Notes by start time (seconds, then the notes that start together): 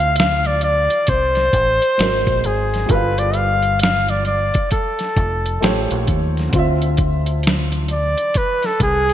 Already playing: D2 D3 C4 F4 F5
0.16 F5, closed hi-hat
0.20 snare
0.45 D5, closed hi-hat
0.61 D5, closed hi-hat
0.90 closed hi-hat
1.07 C2 C5, kick, closed hi-hat
1.35 snare, closed hi-hat
1.53 A1, kick, closed hi-hat
1.82 closed hi-hat
1.97 G#1 G#3 F#4 A#4, snare, closed hi-hat
2.02 C5
2.27 A#1, kick, closed hi-hat
2.44 G#1 G#4, closed hi-hat
2.74 snare, closed hi-hat
2.86 G3 F4, kick, closed hi-hat
2.90 G1 A4 B4
2.95 F5
3.18 D5, closed hi-hat
3.33 F5, closed hi-hat
3.62 closed hi-hat
3.79 F5, closed hi-hat
3.83 snare
4.08 D5, closed hi-hat
4.25 D5, closed hi-hat
4.54 kick, closed hi-hat
4.71 A4, kick, closed hi-hat
4.99 snare, closed hi-hat
5.17 F1, kick, closed hi-hat
5.46 closed hi-hat
5.61 A1 A3 F4 G4 C5, snare, closed hi-hat
5.65 C#5
5.91 A#1, closed hi-hat
6.07 D#2, kick, closed hi-hat
6.37 snare, closed hi-hat
6.49 D3 C4, kick, closed hi-hat
6.54 D2 F4
6.59 E5
6.82 closed hi-hat
6.97 kick, closed hi-hat
7.26 closed hi-hat
7.43 closed hi-hat
7.47 snare
7.72 closed hi-hat
7.88 D5, closed hi-hat
8.18 closed hi-hat
8.34 B4, kick, closed hi-hat
8.63 A4, snare, closed hi-hat
8.80 C2 G#4, kick, closed hi-hat
9.09 closed hi-hat